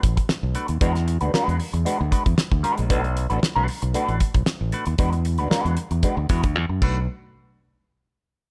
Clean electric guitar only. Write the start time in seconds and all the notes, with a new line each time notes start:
0.03 muted clean electric guitar stroke
0.17 muted clean electric guitar stroke
0.29 muted clean electric guitar stroke
0.55 A3 D4 F#4 B4
0.69 muted clean electric guitar stroke
0.81 G#3 D4 F#4 B4
0.95 muted clean electric guitar stroke
1.07 muted clean electric guitar stroke
1.21 G#3 D4 F#4 B4
1.33 G#3 D4 F#4 B4
1.59 muted clean electric guitar stroke
1.73 muted clean electric guitar stroke
1.85 G#3 D4 F#4 B4
2.00 muted clean electric guitar stroke
2.12 G#3 D4 F#4 B4
2.51 muted clean electric guitar stroke
2.63 G#3 D4 F#4 B4
2.78 muted clean electric guitar stroke
2.90 A3 D4 F#4 B4
3.03 muted clean electric guitar stroke
3.16 muted clean electric guitar stroke
3.30 A3 D4 F#4 B4
3.56 A3 D4 F#4 B4
3.70 muted clean electric guitar stroke
3.82 muted clean electric guitar stroke
3.94 A3 D4 F#4 B4
4.21 muted clean electric guitar stroke
4.34 muted clean electric guitar stroke
4.46 muted clean electric guitar stroke
4.72 A3 D4 F#4 B4
4.87 muted clean electric guitar stroke
4.99 G#3 D4 F#4 B4
5.12 muted clean electric guitar stroke
5.25 muted clean electric guitar stroke
5.39 G#3 D4 F#4 B4
5.50 G#3 D4 F#4 B4
5.78 muted clean electric guitar stroke
5.92 muted clean electric guitar stroke
6.04 G#3 D4 F#4 B4
6.18 muted clean electric guitar stroke
6.30 G#3 D4 F#4 B4
6.44 muted clean electric guitar stroke
6.70 muted clean electric guitar stroke
6.82 A3 D4 F#4 B4